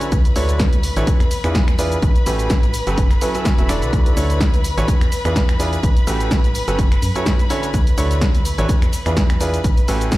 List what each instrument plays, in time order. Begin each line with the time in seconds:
Already playing: violin section B4 B5
0.01 closed hi-hat, shaker
0.12 fm bass D2, kick, closed hi-hat, shaker
0.25 closed hi-hat, shaker
0.36 fm bass D2, grand piano D3 D4 E4 F#4 A4 C#5, open hi-hat, shaker
0.49 closed hi-hat, shaker
0.60 kick, snare, closed hi-hat, shaker
0.73 closed hi-hat, shaker
0.83 open hi-hat, shaker
0.96 fm bass A1, grand piano E3 D4 E4 F#4 A4 C#5, closed hi-hat, shaker
1.07 kick, closed hi-hat, shaker
1.20 fm bass E2, finger snap, closed hi-hat, shaker
1.31 open hi-hat, shaker
1.44 fm bass E2, grand piano E3 D4 E4 F4 G#4 B4, finger snap, closed hi-hat, shaker
1.55 kick, snare, closed hi-hat, shaker
1.68 finger snap, closed hi-hat, shaker
1.79 grand piano D4 E4 F4 G#4 B4, open hi-hat, shaker
1.92 closed hi-hat, shaker
2.02 fm bass A1, kick, closed hi-hat, shaker
2.15 closed hi-hat, shaker
2.26 fm bass A1, grand piano A2 C#4 F#4 G4 A4 B4, open hi-hat, shaker
2.39 closed hi-hat, shaker
2.50 kick, snare, closed hi-hat, shaker
2.63 closed hi-hat, shaker
2.74 open hi-hat, shaker
2.87 fm bass G1, grand piano F#3 C#4 F#4 G4 A4 B4, closed hi-hat, shaker
2.98 kick, closed hi-hat, shaker
3.11 finger snap, closed hi-hat, shaker
3.21 grand piano F#3 C#4 E4 F#4 A4 B4, open hi-hat, shaker
3.35 grand piano F#3 C#4 E4 F#4 A4 E5, closed hi-hat, shaker
3.45 kick, snare, closed hi-hat, shaker
3.58 fm bass E1, grand piano F#3 C#4 E4 F#4 A4 E5, closed hi-hat, shaker
3.69 grand piano D3 D4 E4 F#4 A4 D5, finger snap, open hi-hat, shaker
3.82 fm bass B1, closed hi-hat, shaker
3.93 fm bass D2, kick, closed hi-hat, shaker
4.06 closed hi-hat, shaker
4.17 fm bass D2, grand piano D3 D4 E4 F#4 A4 C#5, open hi-hat, shaker
4.30 closed hi-hat, shaker
4.41 kick, snare, closed hi-hat, shaker
4.54 closed hi-hat, shaker
4.64 open hi-hat, shaker
4.77 fm bass A1, grand piano E3 D4 E4 F#4 A4 C#5, closed hi-hat, shaker
4.88 kick, closed hi-hat, shaker
5.01 fm bass E2, finger snap, closed hi-hat, shaker
5.12 open hi-hat, shaker
5.25 fm bass E2, grand piano E3 D4 E4 F4 G#4 B4, finger snap, closed hi-hat, shaker
5.36 kick, snare, closed hi-hat, shaker
5.49 finger snap, closed hi-hat, shaker
5.60 grand piano D4 E4 F4 G#4 B4, open hi-hat, shaker
5.73 closed hi-hat, shaker
5.83 fm bass A1, kick, closed hi-hat, shaker
5.97 closed hi-hat, shaker
6.07 fm bass A1, grand piano A2 C#4 F#4 G4 A4 B4, open hi-hat, shaker
6.20 closed hi-hat, shaker
6.31 kick, snare, closed hi-hat, shaker
6.44 closed hi-hat, shaker
6.55 open hi-hat, shaker
6.68 fm bass G1, grand piano F#3 C#4 F#4 G4 A4 B4, closed hi-hat, shaker
6.79 kick, closed hi-hat, shaker
6.92 finger snap, closed hi-hat, shaker
7.02 fm bass F#2, open hi-hat, shaker
7.15 grand piano F#3 C#4 E4 F#4 A4 C#5, closed hi-hat, shaker
7.26 kick, snare, closed hi-hat, shaker
7.39 closed hi-hat, shaker
7.50 grand piano D3 C#4 E4 F#4 A4 C#5, open hi-hat, shaker
7.63 closed hi-hat, shaker
7.74 fm bass D2, kick, closed hi-hat, shaker
7.87 closed hi-hat, shaker
7.98 fm bass D2, grand piano D3 D4 E4 F#4 A4 C#5, open hi-hat, shaker
8.11 closed hi-hat, shaker
8.21 kick, snare, closed hi-hat, shaker
8.35 closed hi-hat, shaker
8.45 open hi-hat, shaker
8.58 fm bass A1, grand piano E3 D4 E4 F#4 A4 C#5, closed hi-hat, shaker
8.69 kick, closed hi-hat, shaker
8.82 fm bass E2, finger snap, closed hi-hat, shaker
8.93 open hi-hat, shaker
9.06 fm bass E2, grand piano E3 D4 E4 F4 G#4 B4, finger snap, closed hi-hat, shaker
9.17 kick, snare, closed hi-hat, shaker
9.30 finger snap, closed hi-hat, shaker
9.41 grand piano D4 E4 F4 G#4 B4, open hi-hat, shaker
9.54 closed hi-hat, shaker
9.64 fm bass A1, kick, closed hi-hat, shaker
9.77 closed hi-hat, shaker
9.88 fm bass A1, grand piano A2 C#4 F#4 G4 A4 B4, open hi-hat, shaker
10.01 closed hi-hat, shaker
10.12 kick, snare, closed hi-hat, shaker